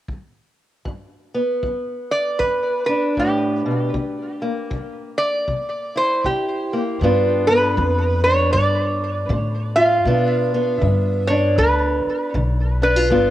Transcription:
0.08 kick
0.85 G2, kick
1.34 B3
1.63 G2, kick
2.11 D5
2.39 G2 B4, kick
2.86 D4 B4
3.17 A2 G4, kick
3.66 B2
3.94 C3, kick
4.42 A#3
4.71 C3, kick
5.18 D5
5.48 C3, kick
5.96 E4 C5
6.24 C3 G4, kick
6.73 A#3
7.01 G2 B3 D4 F4, kick
7.47 B3 B4
7.77 F2 D3, kick
8.24 D4 C#5
8.53 D2 G2 D5, kick
9.29 A2 D3, kick
9.76 F4 F5
10.05 G2 B2 B3 D4 F4, kick
10.54 B3
10.78 D3 E5
10.82 G2, kick
11.27 D4 C#5
11.58 D2 B4, kick
12.06 muted upright bass stroke
12.34 B1 D3, kick
12.82 D4 B4
12.96 F4
13.10 G1 G2 B3 D4 F4, kick

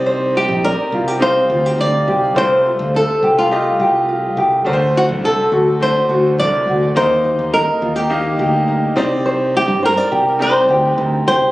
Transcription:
Already playing: C2 C4 D#4 G4 D5 D#5
0.06 C5
0.35 D#4 G4
0.48 A#1
0.64 A#4 D5
0.92 C2 F4
1.08 G4
1.20 C4 D#4 G4 C5 F5
1.50 D2 F4
1.66 G4
1.78 D2 D#4 D5
2.08 C2 G4
2.35 C2 A3 F4 G4 C5
2.66 F4
2.79 D2
2.94 A4
3.23 C2 G4
3.38 F4
3.50 A3 F4 G4 D#5
3.79 C2 G4
4.09 F4
4.37 C2 G4
4.65 D2 A3 D4 F#4 A#4 C5
4.73 C5
4.95 D4 F#4
5.09 C2
5.24 A4
5.52 D2 F#4
5.80 A3 D4 F#4 C5
6.09 D2 F#4
6.38 C2 D4 D5
6.67 D2 F#4
6.95 D#2 A#3 D#4 F4 A#4 C5 D#5
7.03 G4
7.24 D#4
7.39 D#2
7.54 A#4 D#5
7.82 D#2 F4
7.96 G4
8.10 A#3 D#4 G4 D#5
8.39 D2 G4
8.68 D#4
8.96 C2 C4 D#4 G4 C5 D5
9.26 C5
9.55 D#4 G4
9.68 G2
9.83 A#4 C5
9.97 D5
10.12 C2 G4
10.39 C4 D#4 G4 C5 D5
10.69 D2 G4
10.98 D2 D#4
11.05 A#4
11.27 C2 G4 C5

